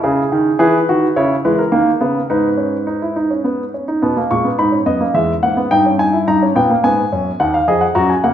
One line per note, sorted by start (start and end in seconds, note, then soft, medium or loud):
0.00 0.21 C#3 medium
0.00 0.58 E4 medium
0.00 0.58 G#4 medium
0.32 0.49 D#3 medium
0.59 0.77 E3 medium
0.59 0.77 G#4 medium
0.59 1.14 B4 medium
0.89 1.06 D#3 medium
0.89 1.06 F#4 medium
1.16 1.34 C#3 medium
1.16 1.34 E4 medium
1.16 1.34 C#5 medium
1.45 1.62 E3 medium
1.45 1.62 G#3 medium
1.45 1.58 B4 medium
1.58 2.28 A#4 medium
1.72 1.90 D#3 medium
1.72 1.90 A#3 medium
2.01 2.19 C#3 medium
2.01 2.19 B3 medium
2.30 3.70 G#2 medium
2.30 2.48 D#4 medium
2.30 3.70 B4 medium
2.58 2.76 C#4 medium
2.87 3.01 D#4 medium
3.02 3.16 E4 medium
3.16 3.30 D#4 medium
3.31 3.45 C#4 medium
3.44 3.62 B3 medium
3.74 3.88 C#4 soft
3.88 4.02 D#4 medium
4.02 4.20 B2 medium
4.02 4.16 B3 medium
4.17 4.31 A#3 medium
4.31 4.49 A#2 medium
4.31 4.45 G#3 medium
4.31 4.48 C#6 medium
4.45 4.59 B3 medium
4.58 4.76 G#2 medium
4.58 4.73 D#4 medium
4.58 4.76 B5 medium
4.72 4.86 C#4 medium
4.86 5.04 F#2 soft
4.86 5.00 B3 medium
4.86 5.04 D#5 medium
5.01 5.15 A#3 medium
5.14 5.32 E2 medium
5.14 5.32 G#3 medium
5.14 5.32 E5 medium
5.43 5.61 G#2 medium
5.43 5.57 A#3 medium
5.43 5.61 F#5 medium
5.57 5.71 B3 medium
5.71 6.26 G2 medium
5.71 5.85 D#4 medium
5.71 5.89 G5 medium
5.86 6.00 C#4 medium
5.99 6.13 D#4 medium
5.99 6.17 G#5 medium
6.13 6.27 E4 medium
6.27 6.45 G2 medium
6.27 6.42 D#4 medium
6.27 6.45 A#5 medium
6.43 6.56 C#4 medium
6.55 6.73 A#2 medium
6.55 6.70 B3 medium
6.55 6.74 G5 medium
6.70 6.84 A#3 medium
6.84 7.01 G#2 medium
6.84 7.01 B3 medium
6.84 7.39 G#5 medium
7.12 7.30 F#2 medium
7.12 7.30 C#4 medium
7.40 7.57 D#2 medium
7.40 7.57 D#4 medium
7.40 7.54 F#5 medium
7.54 7.68 F5 medium
7.68 7.85 F2 medium
7.68 7.85 G#4 medium
7.68 7.82 D#5 medium
7.81 7.95 F#5 medium
7.95 8.13 F#2 medium
7.95 8.12 F#4 medium
7.95 8.09 A#5 medium
8.10 8.23 G#5 medium
8.24 8.34 C#3 medium
8.24 8.34 A#3 medium
8.24 8.34 F#5 medium